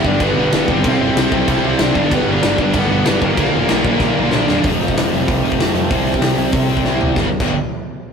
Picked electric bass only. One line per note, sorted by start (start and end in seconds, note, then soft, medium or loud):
0.05 0.15 G1 loud
0.21 0.31 G1 medium
0.37 0.47 G1 medium
0.52 0.62 G1 medium
0.69 0.86 G1 loud
0.85 0.95 C2 medium
0.99 1.10 G1 medium
1.15 1.26 C2 loud
1.32 1.42 C2 medium
1.48 1.58 C2 loud
1.64 1.74 C2 loud
1.79 1.89 C2 medium
1.96 2.06 G1 medium
2.12 2.22 G1 medium
2.28 2.37 G1 medium
2.44 2.54 G1 medium
2.58 2.69 G1 medium
2.74 2.85 G1 loud
2.91 3.01 G1 medium
3.08 3.17 G1 medium
3.22 3.32 G1 loud
3.38 3.48 A#1 medium
3.55 3.65 F1 medium
3.71 3.81 A#1 medium
3.85 3.95 A#1 loud
4.00 4.10 A#1 loud
4.18 4.28 A#1 medium
4.34 4.44 A#1 loud
4.49 4.59 E1 medium
4.64 4.77 F1 medium
4.82 4.94 F1 medium
4.96 5.09 F1 medium
5.12 5.25 F1 medium
5.29 5.41 C2 loud
5.43 5.56 F1 medium
5.57 5.71 F1 medium
5.74 5.88 F2 medium
5.91 6.17 C2 medium
6.21 6.35 C2 medium
6.38 6.51 C2 medium
6.53 6.67 C3 medium
6.69 6.83 C2 medium
6.85 6.98 C2 medium
7.01 7.14 C2 medium
7.17 7.26 G1 medium
7.40 7.56 G1 medium